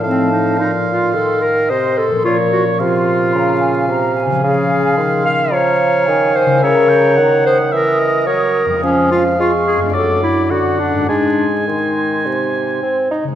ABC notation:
X:1
M:4/4
L:1/8
Q:1/4=109
K:Bbm
V:1 name="Flute section"
=a2 c'4 c'2 | d'2 c'2 b a b a- | [K:Db] a2 c'2 b2 a a | b2 b e'4- e'- |
e'2 d'2 =d'2 d'2 | c'6- c' z |]
V:2 name="Oboe"
f6 e z | d2 f6 | [K:Db] f4 f4 | _f =g _g2 f e d z |
f4 =d2 ^f2 | a6- a z |]
V:3 name="Clarinet"
C E E F =A B c A | F G F4- F z | [K:Db] A3 f d3 c | d3 c B2 B2 |
D F F A =A _F ^F =D | =D z E4- E z |]
V:4 name="Harp"
[=A,,F,EFc]8 | [B,,F,DB]8 | [K:Db] [D,F,DA]8 | [D,=G,_FB]8 |
[F,,A,Fd]4 [^F,,=A,=D=d]4 | [A,,A,Ec]8 |]
V:5 name="Bassoon" clef=bass
=A,,2 B,,2 E,2 C, z | B,,2 C,2 D,2 C,2 | [K:Db] D,2 E,2 F,2 E,2 | D,2 E,2 _F,2 G, z |
F,2 A,2 ^F,2 =D,2 | A,2 E,2 C,2 C E |]